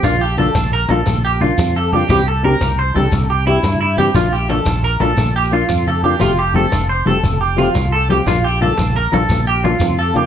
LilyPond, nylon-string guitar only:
\new Staff \with { instrumentName = "Nylon-string guitar" } { \time 12/8 \key bes \lydian \tempo 4. = 117 <f bes d' f'>8 r8 <f bes d' f'>8 r4 <f bes d' f'>8 r4 <f bes d' f'>8 r4 <f bes d' f'>8 | <e c' d' g'>8 r8 <c' d' g'>8 r4 <e c' d' g'>8 r4 <c' d' g'>8 r4 <e c' d' g'>8 | <f bes d' f'>8 r8 <f bes d'>8 r4 <f bes d' f'>8 r4 <f bes d' f'>8 r4 <f bes d' f'>8 | <f a c' g'>8 r8 <f a c' g'>8 r4 <f a c' g'>8 r4 <f a c' g'>8 r4 <f a c' g'>8 |
<f bes d' f'>8 r8 <f bes d' f'>8 r4 <f bes d' f'>8 r4 <f bes d' f'>8 r4 <f bes d' f'>8 | }